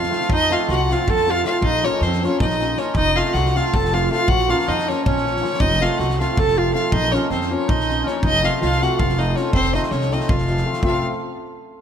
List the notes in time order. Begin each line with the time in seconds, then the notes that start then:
Already playing: F4 F5
0.03 snare
0.09 F3 A3 C4 F4, snare
0.21 snare
0.29 F2 D#4, kick
0.33 D#5
0.49 F3 A3 C4 F4 F5, snare
0.53 F4
0.68 C2 F#4 F#5, snare
0.89 F3 A3 C4 F4 F5, snare
1.07 F2 A4 A5, kick
1.16 snare
1.26 F3 A3 C4 F4, snare
1.31 F5
1.43 F3 A3 C4 F4 F5, snare
1.58 A#1 F4 F5
1.62 D#4 D#5, kick
1.83 F3 A#3 C#4 F4 C#5, snare
2.01 F2 C5, snare
2.06 C4
2.12 snare
2.23 F3 A#3 C#4 F4 C#5, snare
2.40 A#1 D#4 D#5, kick
2.50 snare
2.59 F3 A#3 C#4 F4, snare
2.77 F3 A#3 C#4 F4 C#5, snare
2.95 F1 D#4 D#5, kick
3.15 F3 A3 C4 F4 F5, snare
3.33 C2 F#4 F#5, snare
3.46 snare
3.55 F3 A3 C4 F4 F5, snare
3.74 F1 A4 A5, kick
3.85 snare
3.92 F3 A3 C4 F4 F5, snare
4.09 F3 A3 C4 F4 F5, snare
4.28 A#1 F#4 F#5, kick
4.39 snare
4.48 F3 A#3 C#4 F4 F5, snare
4.59 snare
4.68 F2 D#4 D#5, snare
4.78 snare
4.87 F3 A#3 C#4 F4 C#5, snare
5.05 A#1 C#4 C#5, kick
5.17 snare
5.24 F3 A#3 C#4 F4, snare
5.36 snare
5.41 F3 A#3 C#4 F4, snare
5.53 snare
5.60 F1 D#4 D#5, kick
5.80 F3 A3 C4 F4 F5, snare
5.98 C2 F#4 F#5, snare
6.10 snare
6.19 F3 A3 C4 F4 F5, snare
6.37 F1 A4 A5, kick
6.48 snare
6.56 F3 A3 C4 F4 F5
6.73 F3 A3 C4 F4 F5, snare
6.88 F4 F5
6.92 A#1 D#4 D#5, kick
7.11 F3 A#3 C#4 F4 C#5, snare
7.31 F2 C4 C5, snare
7.41 snare
7.50 F3 A#3 C#4 F4 C#5
7.67 A#1 D#4 D#5, kick
7.80 snare
7.87 F3 A#3 C#4 F4, snare
8.03 F3 A#3 C#4 F4 C#5, snare
8.22 F1 D#4 D#5, kick
8.43 F3 A3 C4 F4 F5, snare
8.62 C2 F4 F5, snare
8.72 snare
8.80 F3 A3 C4 F4 F#4 F#5, snare
8.99 F1 F4 F5, kick
9.09 snare
9.17 F3 A3 C4 D#4 F4 D#5, snare
9.35 F3 A3 C4 C#4 F4 C#5, snare
9.53 F1 C4 C5, kick
9.64 snare
9.73 F3 A3 C4 D#4 F4 D#5, snare
9.83 D#4, snare
9.87 C#4 D#5
9.91 C2 C#5, snare
10.01 snare
10.11 F3 A3 C4 D#4 F4 D#5, snare
10.20 snare
10.29 F1 F4 F5, kick
10.38 snare
10.47 F3 A3 C4 F4, snare
10.57 snare
10.65 F3 A3 C4 F4
10.73 snare
10.83 F1 F3 A3 C4 F4 F5, kick